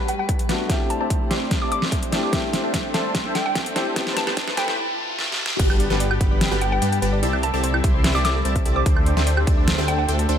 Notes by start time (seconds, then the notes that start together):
Already playing: F#3 G3 A3 B3 D4 F#4 B4, riser
0.00 G3 G4 B4 F#5 A5
0.08 G5, closed hi-hat
0.19 G5
0.29 G3 G4 B4 F#5 A5, kick, closed hi-hat
0.39 closed hi-hat
0.48 G3 A3 B3 D4 F#4 G4 B4 F#5 A5, snare, closed hi-hat
0.67 A3 C4 D4 E4 G4 C5 D5 E5 A5, kick, snare, closed hi-hat
0.72 G4
0.90 A5, closed hi-hat
1.00 C4 G4 D5 E5 A5
1.10 kick, closed hi-hat
1.30 C4 G4 D5 E5 C6, snare, closed hi-hat
1.51 kick, snare, closed hi-hat
1.62 C4 G4 D5 E5 A5 D6
1.72 D6, closed hi-hat
1.82 snare
1.92 C4 G4 D5 E5 A5, kick, closed hi-hat
2.03 closed hi-hat
2.11 A3 C4 D4 E4 G4 D5 E5 A5, snare, closed hi-hat
2.23 D6
2.31 G3 A3 C4 D4 E4 G4 A4 C5 E5 G5, kick, snare, closed hi-hat
2.53 snare, closed hi-hat
2.64 D4 A4 C5 E5 G5
2.74 kick, snare, closed hi-hat
2.94 D4 A4 C5 E5 A5, snare, closed hi-hat
3.15 kick, snare, closed hi-hat
3.25 D4 A4 C5 E5 G5
3.35 G5, snare, closed hi-hat
3.46 G5
3.55 D4 A4 C5 E5 G5, kick, snare, closed hi-hat
3.66 closed hi-hat
3.75 A3 C4 D4 E4 G4 A4 C5 E5 G5, snare, closed hi-hat
3.94 G3 A3 B3 C4 E4 G4 A4 B4 C5 A5, kick, snare, closed hi-hat
4.07 snare
4.17 A5, snare, closed hi-hat
4.27 A3 G4 B4 C5 A5, snare
4.37 kick, snare, closed hi-hat
4.48 snare
4.57 A3 G4 B4 C5 G5 B5, snare, closed hi-hat
4.68 snare
5.19 snare
5.32 snare
5.46 snare
5.59 G1 G3 B3 F#4 G4 B4 F#5 A5, kick, closed hi-hat, crash
5.70 G5, high woodblock
5.80 D5, closed hi-hat
5.90 G1 G3 G4 B4 F#5 A5, snare
6.00 D5, closed hi-hat
6.11 F#4, high woodblock
6.21 G1 G3 F#4 G4 B4 F#5 B5, kick, closed hi-hat
6.31 D5
6.41 G5, snare, closed hi-hat
6.51 G1 G3 F#4 G4 B4 F#5 A5
6.61 B4 G5, closed hi-hat
6.72 B4 G5
6.82 G2 G3 G4 B4 D5 F#5 A5, closed hi-hat
6.92 G5, closed hi-hat
7.02 G1 G3 G4 B4 F#5 A5, closed hi-hat
7.13 D5
7.22 C2 D3 A3 C4 E4 G4 D5 E5 A5, closed hi-hat
7.33 E5, high woodblock
7.43 C5 A5, closed hi-hat
7.53 C2 C4 G4 A4 D5 E5 A5
7.63 C5, closed hi-hat
7.74 E4, high woodblock
7.84 C2 C4 E4 G4 D5 E5 C6, kick, closed hi-hat
7.94 C5
8.04 E5, snare, closed hi-hat
8.15 C2 C4 E4 G4 D5 E5 A5 D6
8.24 A4 D6, snare, closed hi-hat
8.35 A4
8.45 C2 C4 G4 C5 D5 E5 A5, closed hi-hat
8.55 E5, kick, closed hi-hat
8.65 C2 C4 G4 A4 D5 E5 A5, closed hi-hat
8.76 C5 D6
8.86 D2 G3 C4 D4 G4 A4 C5 E5 G5, kick, closed hi-hat
8.96 A5, high woodblock
9.06 D5, closed hi-hat
9.17 D2 D4 A4 C5 E5 G5, snare
9.27 D5, closed hi-hat
9.37 G4, high woodblock
9.47 D2 D4 G4 A4 C5 E5 A5, kick, closed hi-hat
9.57 D5
9.67 A5, snare, closed hi-hat
9.78 D2 D4 G4 A4 C5 E5 G5
9.88 C5 G5, closed hi-hat
9.98 C5 G5
10.08 D2 D4 A4 C5 D5 E5 G5, closed hi-hat
10.19 A5, closed hi-hat
10.29 D2 D4 A4 C5 E5 G5, closed hi-hat